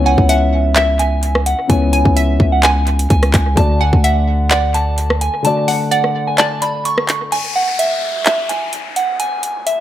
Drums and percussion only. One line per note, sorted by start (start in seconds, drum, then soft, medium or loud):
0.18 kick medium
0.29 closed hi-hat medium
0.76 clap loud
0.76 closed hi-hat medium
0.99 closed hi-hat medium
1.23 closed hi-hat medium
1.35 cross-stick loud
1.46 closed hi-hat medium
1.70 kick loud
1.70 closed hi-hat medium
1.93 closed hi-hat medium
2.05 kick medium
2.17 closed hi-hat medium
2.40 kick medium
2.63 clap loud
2.63 closed hi-hat medium
2.87 closed hi-hat medium
2.99 closed hi-hat medium
3.10 kick loud
3.10 closed hi-hat medium
3.23 cross-stick loud
3.23 closed hi-hat soft
3.34 kick loud
3.34 clap medium
3.34 closed hi-hat medium
3.57 kick loud
3.57 closed hi-hat medium
3.93 kick medium
4.04 closed hi-hat medium
4.51 clap loud
4.51 closed hi-hat medium
4.74 closed hi-hat medium
4.98 closed hi-hat medium
5.10 cross-stick loud
5.21 closed hi-hat medium
5.45 closed hi-hat medium
5.68 open hi-hat medium
5.92 closed hi-hat medium
6.04 cross-stick medium
6.38 clap loud
6.38 closed hi-hat medium
6.62 closed hi-hat medium
6.85 closed hi-hat medium
6.98 cross-stick loud
7.09 clap medium
7.09 closed hi-hat medium
7.32 closed hi-hat medium
7.79 closed hi-hat medium
8.26 clap loud
8.26 closed hi-hat medium
8.49 closed hi-hat medium
8.73 closed hi-hat medium
8.96 closed hi-hat medium
9.20 closed hi-hat medium
9.43 closed hi-hat medium
9.67 closed hi-hat medium